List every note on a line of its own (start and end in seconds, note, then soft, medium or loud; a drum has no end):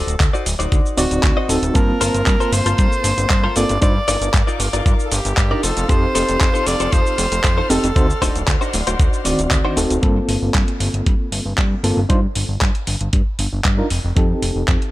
0.00 0.14 D#4 loud
0.00 0.14 F#4 medium
0.00 0.46 A4 loud
0.00 0.14 C5 loud
0.00 0.14 D5 loud
0.07 0.16 D1 medium
0.07 closed hi-hat medium
0.07 shaker soft
0.20 0.29 D2 loud
0.20 kick loud
0.20 clap loud
0.20 closed hi-hat soft
0.20 shaker soft
0.33 0.46 D#4 medium
0.33 0.46 F#4 medium
0.33 0.46 C5 medium
0.33 0.46 D5 medium
0.33 shaker soft
0.46 0.55 D1 loud
0.46 open hi-hat loud
0.46 shaker medium
0.59 0.67 D1 medium
0.59 0.98 D#4 loud
0.59 0.98 F#4 medium
0.59 0.98 C5 medium
0.59 0.98 D5 loud
0.59 closed hi-hat medium
0.59 shaker soft
0.72 0.81 D2 medium
0.72 kick loud
0.72 closed hi-hat medium
0.72 shaker soft
0.86 shaker soft
0.97 1.06 D1 loud
0.97 1.46 C4 medium
0.97 1.46 D#4 medium
0.97 1.47 F#4 medium
0.97 1.52 F#4 medium
0.97 1.47 D5 loud
0.97 open hi-hat loud
0.97 shaker medium
1.11 1.19 D1 medium
1.11 closed hi-hat medium
1.11 shaker soft
1.23 1.32 D2 medium
1.23 kick loud
1.23 clap loud
1.23 closed hi-hat medium
1.23 shaker soft
1.37 1.49 D#4 medium
1.37 1.50 F#4 medium
1.37 1.50 C5 medium
1.37 1.49 D#5 loud
1.49 1.58 D1 medium
1.49 1.72 C4 medium
1.49 1.72 D#4 medium
1.49 1.72 F#4 medium
1.49 1.72 A4 medium
1.49 1.77 A4 medium
1.49 open hi-hat medium
1.49 shaker medium
1.63 1.71 D1 loud
1.63 muted clean electric guitar stroke soft
1.63 closed hi-hat medium
1.63 shaker soft
1.74 1.92 G2 loud
1.74 3.53 A#3 medium
1.74 3.80 A#3 medium
1.74 3.53 C4 medium
1.74 3.53 F4 medium
1.74 2.55 A#4 loud
1.74 3.80 F5 medium
1.74 3.80 A5 medium
1.74 3.54 A5 medium
1.74 3.80 C6 medium
1.74 kick loud
1.74 closed hi-hat medium
1.74 shaker soft
2.01 2.10 G1 medium
2.01 2.21 F4 loud
2.01 2.21 A4 medium
2.01 2.21 A#4 loud
2.01 2.21 C5 loud
2.01 open hi-hat loud
2.01 shaker medium
2.15 2.22 G1 medium
2.15 closed hi-hat medium
2.15 shaker soft
2.26 2.36 G2 loud
2.26 kick loud
2.26 clap loud
2.26 closed hi-hat soft
2.26 shaker soft
2.40 2.53 F4 medium
2.40 2.53 A4 medium
2.40 2.53 A#4 medium
2.40 2.53 C5 loud
2.40 shaker soft
2.52 2.61 G1 loud
2.52 3.56 C5 loud
2.52 open hi-hat medium
2.52 shaker medium
2.66 2.74 G1 medium
2.66 3.04 F4 loud
2.66 3.05 A4 medium
2.66 3.05 A#4 loud
2.66 3.05 C5 loud
2.66 closed hi-hat medium
2.66 shaker soft
2.78 2.87 G2 medium
2.78 kick loud
2.78 closed hi-hat soft
2.78 shaker soft
2.93 shaker soft
3.04 3.13 G1 medium
3.04 open hi-hat loud
3.04 shaker medium
3.18 3.26 G1 medium
3.18 closed hi-hat medium
3.18 shaker soft
3.30 3.47 G2 medium
3.30 kick loud
3.30 clap loud
3.30 closed hi-hat medium
3.30 shaker soft
3.44 3.56 F4 medium
3.44 3.56 A4 medium
3.44 3.56 A#4 medium
3.44 3.56 C5 loud
3.56 3.65 G1 medium
3.56 3.72 A#3 medium
3.56 3.72 C4 medium
3.56 3.72 F4 medium
3.56 3.72 A4 loud
3.56 3.81 D5 loud
3.56 open hi-hat medium
3.56 shaker medium
3.69 3.78 G1 loud
3.69 muted clean electric guitar stroke soft
3.69 closed hi-hat medium
3.69 shaker soft
3.81 3.99 G2 loud
3.81 3.92 D4 loud
3.81 3.92 D#4 medium
3.81 3.92 F4 medium
3.81 5.62 A#4 medium
3.81 3.92 C5 loud
3.81 4.56 D5 loud
3.81 7.92 F5 medium
3.81 5.62 D6 medium
3.81 kick loud
3.81 closed hi-hat medium
3.81 shaker soft
4.08 4.17 G1 medium
4.08 4.28 D#4 loud
4.08 4.28 F4 loud
4.08 4.28 A#4 loud
4.08 4.28 D5 loud
4.08 open hi-hat loud
4.08 shaker medium
4.21 4.29 G1 medium
4.21 closed hi-hat medium
4.21 shaker soft
4.34 4.43 G2 loud
4.34 kick loud
4.34 clap loud
4.34 closed hi-hat medium
4.34 shaker soft
4.47 4.60 D#4 medium
4.47 4.60 F4 medium
4.47 4.60 A#4 medium
4.47 4.60 D5 loud
4.47 shaker soft
4.60 4.68 G1 loud
4.60 open hi-hat medium
4.60 shaker medium
4.73 4.81 G1 medium
4.73 5.12 D#4 loud
4.73 5.12 F4 loud
4.73 5.12 A#4 medium
4.73 5.12 D5 loud
4.73 closed hi-hat medium
4.73 shaker soft
4.86 4.94 G2 medium
4.86 kick loud
4.86 closed hi-hat medium
4.86 shaker soft
5.00 shaker soft
5.05 5.14 A4 medium
5.11 5.20 G1 loud
5.11 5.64 G4 loud
5.11 open hi-hat loud
5.11 shaker medium
5.25 5.33 G1 medium
5.25 closed hi-hat medium
5.25 shaker soft
5.37 5.54 G2 medium
5.37 kick loud
5.37 clap loud
5.37 closed hi-hat medium
5.37 shaker soft
5.51 5.60 D4 medium
5.51 5.60 D#4 medium
5.51 5.63 D#4 medium
5.51 5.60 F4 medium
5.51 5.62 F4 medium
5.51 5.63 A#4 medium
5.51 5.60 A#4 medium
5.51 5.63 D5 loud
5.63 5.72 F1 medium
5.63 6.05 D#4 medium
5.63 6.05 F4 medium
5.63 5.91 A4 loud
5.63 7.94 A4 medium
5.63 6.05 A4 medium
5.63 6.05 C5 loud
5.63 7.94 C6 medium
5.63 9.99 F6 medium
5.63 open hi-hat medium
5.63 shaker medium
5.77 5.85 F1 loud
5.77 closed hi-hat medium
5.77 shaker soft
5.88 6.06 F2 loud
5.88 7.67 C4 medium
5.88 7.67 D#4 medium
5.88 7.67 G4 medium
5.88 7.68 A4 medium
5.88 6.68 C5 loud
5.88 kick loud
5.88 closed hi-hat medium
5.88 shaker soft
6.15 6.24 F1 medium
6.15 6.35 D#4 loud
6.15 6.35 F4 loud
6.15 6.35 A4 loud
6.15 6.35 C5 loud
6.15 open hi-hat loud
6.15 shaker medium
6.29 6.37 F1 medium
6.29 closed hi-hat medium
6.29 shaker soft
6.41 6.50 F2 loud
6.41 kick loud
6.41 clap loud
6.41 closed hi-hat medium
6.41 shaker soft
6.54 6.67 D#4 medium
6.54 6.67 F4 medium
6.54 6.67 A4 medium
6.54 6.67 C5 loud
6.54 shaker soft
6.66 6.75 F1 loud
6.66 6.93 D5 loud
6.66 open hi-hat medium
6.66 shaker medium
6.80 6.88 F1 medium
6.80 7.19 D#4 medium
6.80 7.19 F4 medium
6.80 7.19 A4 loud
6.80 7.19 C5 loud
6.80 closed hi-hat medium
6.80 shaker soft
6.92 7.01 F2 medium
6.92 7.71 C5 loud
6.92 kick loud
6.92 closed hi-hat medium
6.92 shaker soft
7.06 shaker soft
7.18 7.27 F1 medium
7.18 open hi-hat loud
7.18 shaker medium
7.32 7.40 F1 medium
7.32 closed hi-hat medium
7.32 shaker soft
7.44 7.61 F2 medium
7.44 kick loud
7.44 clap loud
7.44 closed hi-hat medium
7.44 shaker soft
7.58 7.70 D#4 medium
7.58 7.70 F4 medium
7.58 7.70 A4 medium
7.58 7.70 C5 loud
7.70 7.79 F1 medium
7.70 7.86 C4 medium
7.70 7.86 D#4 medium
7.70 7.86 G4 medium
7.70 8.73 A4 loud
7.70 7.86 A4 loud
7.70 open hi-hat medium
7.70 shaker medium
7.84 7.91 F1 loud
7.84 muted clean electric guitar stroke soft
7.84 closed hi-hat medium
7.84 shaker soft
7.96 8.13 D2 loud
7.96 8.06 C4 loud
7.96 8.06 D#4 medium
7.96 8.06 F#4 medium
7.96 8.06 C5 loud
7.96 10.01 D5 medium
7.96 10.01 F#5 medium
7.96 10.01 C6 medium
7.96 kick loud
7.96 closed hi-hat medium
7.96 shaker soft
8.10 shaker soft
8.22 8.30 D1 medium
8.22 8.42 D4 loud
8.22 8.42 D#4 loud
8.22 8.42 F#4 loud
8.22 8.42 C5 loud
8.22 kick medium
8.22 open hi-hat loud
8.22 shaker medium
8.36 8.43 D1 medium
8.36 closed hi-hat medium
8.36 shaker soft
8.48 8.56 D2 loud
8.48 kick loud
8.48 clap loud
8.48 closed hi-hat medium
8.48 shaker soft
8.61 8.74 D4 medium
8.61 8.74 D#4 medium
8.61 8.74 F#4 medium
8.61 8.74 C5 loud
8.61 shaker soft
8.73 8.82 D1 loud
8.73 open hi-hat medium
8.73 shaker medium
8.87 8.95 D1 medium
8.87 9.25 D4 loud
8.87 9.25 D#4 medium
8.87 9.25 F#4 loud
8.87 9.25 C5 loud
8.87 closed hi-hat medium
8.87 shaker soft
8.99 9.08 D2 medium
8.99 kick loud
8.99 closed hi-hat medium
8.99 shaker soft
9.14 shaker soft
9.25 9.34 D1 medium
9.25 9.74 D#3 medium
9.25 9.74 C4 medium
9.25 9.74 F#4 medium
9.25 9.74 D5 loud
9.25 open hi-hat loud
9.25 shaker medium
9.39 9.47 D1 medium
9.39 closed hi-hat medium
9.39 shaker soft
9.51 9.60 D2 loud
9.51 kick loud
9.51 clap loud
9.51 closed hi-hat medium
9.51 shaker soft
9.65 9.77 D4 medium
9.65 9.77 D#4 medium
9.65 9.77 F#4 medium
9.65 9.77 C5 loud
9.77 9.86 D1 medium
9.77 10.00 C4 medium
9.77 10.00 D#4 medium
9.77 10.00 F#4 medium
9.77 10.00 A4 medium
9.77 open hi-hat medium
9.77 shaker medium
9.90 9.98 D1 medium
9.90 muted clean electric guitar stroke soft
9.90 closed hi-hat medium
9.90 shaker soft
10.02 10.20 G2 medium
10.02 11.80 A#3 medium
10.02 11.81 C4 medium
10.02 11.81 F4 medium
10.02 11.81 A4 medium
10.02 kick loud
10.02 closed hi-hat medium
10.29 10.37 G1 medium
10.29 open hi-hat loud
10.42 10.50 G1 medium
10.54 10.63 G2 loud
10.54 kick loud
10.54 clap loud
10.54 closed hi-hat medium
10.68 closed hi-hat medium
10.80 10.89 G1 loud
10.80 open hi-hat loud
10.94 11.02 G1 medium
10.94 closed hi-hat medium
11.06 11.15 G2 medium
11.06 kick loud
11.06 closed hi-hat medium
11.32 11.41 G1 medium
11.32 open hi-hat loud
11.46 11.54 G1 medium
11.58 11.75 G2 medium
11.58 kick loud
11.58 clap loud
11.58 closed hi-hat medium
11.83 11.92 G1 medium
11.83 11.99 A#3 medium
11.83 11.99 C4 medium
11.83 11.99 F4 medium
11.83 12.00 A4 medium
11.83 open hi-hat loud
11.97 12.05 G1 medium
12.09 12.27 G2 loud
12.09 12.19 D4 medium
12.09 12.19 D#4 medium
12.09 12.19 F4 medium
12.09 12.20 C5 loud
12.09 kick loud
12.09 closed hi-hat medium
12.35 12.44 G1 medium
12.35 open hi-hat loud
12.49 12.57 G1 medium
12.61 12.70 G2 loud
12.61 kick loud
12.61 clap loud
12.61 closed hi-hat medium
12.75 closed hi-hat medium
12.87 12.96 G1 medium
12.87 open hi-hat loud
13.01 13.09 G1 medium
13.01 closed hi-hat medium
13.13 13.22 G2 medium
13.13 kick loud
13.13 closed hi-hat medium
13.39 13.48 G1 medium
13.39 open hi-hat loud
13.53 13.61 G1 medium
13.64 13.82 G2 medium
13.64 kick loud
13.64 clap loud
13.64 closed hi-hat medium
13.77 13.87 D4 medium
13.77 13.87 D#4 medium
13.77 13.87 F4 medium
13.77 13.87 A#4 medium
13.90 13.99 F1 medium
13.90 open hi-hat loud
14.04 14.12 F1 loud
14.16 14.34 F2 loud
14.16 14.91 C4 medium
14.16 14.91 D#4 medium
14.16 14.91 G4 medium
14.16 14.91 A4 medium
14.16 kick loud
14.16 closed hi-hat medium
14.42 14.51 F1 medium
14.42 open hi-hat loud
14.56 14.64 F1 medium
14.68 14.77 F2 loud
14.68 kick loud
14.68 clap loud
14.68 closed hi-hat medium
14.82 closed hi-hat soft